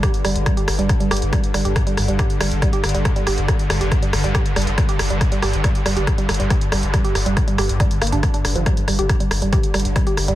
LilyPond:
<<
  \new Staff \with { instrumentName = "Synth arpeggio sound" } { \clef bass \time 4/4 \key c \dorian \tempo 4 = 139 g'16 r16 g16 r16 g16 g'16 r16 g16 r16 g16 g'16 r16 g16 r16 g16 g'16 | r16 g16 r16 g16 g'16 r16 g16 r16 g16 g'16 r16 g16 r16 g16 g'16 r16 | g16 r16 g16 g'16 r16 g16 r16 g16 g'16 r16 g16 r16 g16 g'16 r16 g16 | r16 g16 g'16 r16 g16 r16 g16 g'16 r16 g16 r16 g16 g'16 r16 g16 r16 |
g16 g'16 r16 g16 r16 g16 g'16 r16 g16 r16 bes16 d'16 r16 d'16 r16 f16 | g16 r16 g16 g'16 r16 g16 r16 g16 g'16 r16 g16 r16 g16 g'16 r16 g16 | }
  \new Staff \with { instrumentName = "Synth drone" } { \clef bass \time 4/4 \key c \dorian <g, d>1~ | <g, d>1~ | <g, d>1~ | <g, d>1~ |
<g, d>1 | <g, d>1 | }
  \new Staff \with { instrumentName = "Sub bass" } { \clef bass \time 4/4 \key c \dorian r8 g,,16 g,,16 r8 g,,16 g,,16 r8 g,,16 g,,16 r8 g,,16 g,,16 | r8 g,,16 g,,16 r8 g,,16 g,,16 r8 g,,16 g,,16 r8 g,,16 g,,16 | r8 g,,16 g,,16 r8 g,,16 g,,16 r8 g,,16 g,,16 r8 g,,16 g,,16 | r8 g,,16 g,,16 r8 g,,16 g,,16 r8 g,,16 g,,16 r8 g,,16 g,,16 |
r8 g,,16 g,,16 r8 g,,16 g,,16 r8 g,,16 g,,16 r8 g,,16 g,,16 | r8 g,,16 g,,16 r8 g,,16 g,,16 r8 g,,16 g,,16 r8 g,,16 g,,16 | }
  \new DrumStaff \with { instrumentName = "Drums" } \drummode { \time 4/4 <hh bd ss>16 hh16 <hho ss>16 hh16 <hh bd ss>16 hh16 <hho ss>16 hh16 <hh bd ss>16 hh16 <hho ss>32 hh32 hh16 <hh bd ss>16 hh16 <hho ss>16 hh16 | <hh bd ss>16 hh16 <hho ss>16 hh16 <hh bd ss>16 hh16 <hho ss>16 hh16 <hh bd ss>16 hh16 <hho ss>32 hh32 hh16 <hh bd ss>16 hh16 <hho ss>16 hh16 | <hh bd ss>16 hh16 <hho ss>16 hh16 <hh bd ss>16 hh16 <hho ss>16 hh16 <hh bd ss>16 hh16 <hho ss>32 hh32 hh16 <hh bd ss>16 hh16 <hho ss>16 hh16 | <hh bd ss>16 hh16 <hho ss>16 hh16 <hh bd ss>16 hh16 <hho ss>16 hh16 <hh bd ss>16 hh16 <hho ss>32 hh32 hh16 <hh bd ss>16 hh16 <hho ss>16 hh16 |
<hh bd ss>16 hh16 <hho ss>16 hh16 <hh bd ss>16 hh16 <hho ss>16 hh16 <hh bd ss>16 hh16 <hho ss>32 hh32 hh16 <hh bd ss>16 hh16 <hho ss>16 hh16 | <hh bd ss>16 hh16 <hho ss>16 hh16 <hh bd ss>16 hh16 <hho ss>16 hh16 <hh bd ss>16 hh16 <hho ss>32 hh32 hh16 <hh bd ss>16 hh16 <hho ss>16 hh16 | }
>>